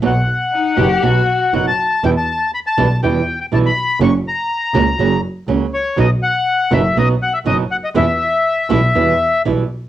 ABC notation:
X:1
M:4/4
L:1/16
Q:1/4=121
K:Em
V:1 name="Bandoneon"
f12 f a3 | g a3 b a3 g3 g a b3 | ^c'2 ^a8 z4 ^c2 | ^d2 f4 e2 d2 f e d2 f d |
e12 z4 |]
V:2 name="Cello"
z4 ^D2 G2 F3 z4 z | z16 | z16 | z16 |
z16 |]
V:3 name="Nylon-string guitar"
[B,,F,B,^DF]2 z4 [B,,F,B,DF]2 [B,,F,B,DF]2 z2 [B,,F,B,DF]2 z2 | [B,,E,G,B,E]2 z4 [B,,E,G,B,E]2 [B,,E,G,B,E]2 z2 [B,,E,G,B,E]2 z2 | [^C,F,^A,^CF]2 z4 [C,F,A,CF]2 [C,F,A,CF]2 z2 [C,F,A,CF]2 z2 | [B,,F,B,^DF]2 z4 [B,,F,B,DF]2 [B,,F,B,DF]2 z2 [B,,F,B,DF]2 z2 |
[B,,E,G,B,E]2 z4 [B,,E,G,B,E]2 [B,,E,G,B,E]2 z2 [B,,E,G,B,E]2 z2 |]
V:4 name="Double bass" clef=bass
B,,,2 z4 F,,,2 B,,,2 z2 F,,,2 z2 | E,,2 z4 B,,,2 E,,2 z2 B,,,2 z2 | F,,,2 z4 ^C,,2 F,,,2 z2 C,,2 z2 | B,,,2 z4 F,,,2 B,,,2 z2 F,,,2 z2 |
E,,2 z4 B,,,2 E,,2 z2 B,,,2 z2 |]